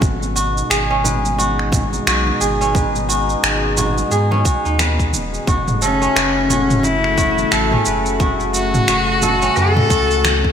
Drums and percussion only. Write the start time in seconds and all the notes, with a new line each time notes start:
0.01 kick, low conga, shaker
0.23 shaker
0.36 shaker
0.57 shaker
0.71 finger snap, shaker
1.05 muted conga, low conga, shaker
1.25 shaker
1.39 muted conga, shaker
1.59 finger snap
1.72 kick, muted conga, low conga, shaker
1.93 high conga, shaker
2.07 finger snap, shaker
2.27 high conga
2.41 shaker
2.62 shaker
2.75 kick, low conga, shaker
2.96 shaker
3.10 shaker
3.29 shaker
3.44 finger snap, shaker
3.77 muted conga, low conga, shaker
3.98 shaker
4.11 high conga, shaker
4.32 muted conga
4.45 kick, shaker
4.65 shaker
4.79 finger snap, high conga, shaker
4.99 kick, shaker
5.13 high conga, shaker
5.34 shaker
5.47 kick, low conga, shaker
5.68 mid tom, shaker
5.82 shaker
6.02 shaker
6.16 finger snap, shaker
6.50 muted conga, low conga, shaker
6.70 mid tom, shaker
6.83 muted conga, shaker
7.04 finger snap
7.17 kick, muted conga, low conga, shaker
7.37 high conga, shaker
7.52 finger snap, shaker
7.71 mid tom, high conga
7.85 shaker
8.06 shaker
8.20 kick, low conga, shaker
8.40 shaker
8.54 shaker
8.74 mid tom, shaker
8.88 finger snap, shaker
9.22 muted conga, low conga, shaker
9.42 shaker
9.56 high conga, shaker
9.76 mid tom, muted conga
9.90 kick, shaker
10.11 shaker
10.25 finger snap, high conga, shaker
10.45 kick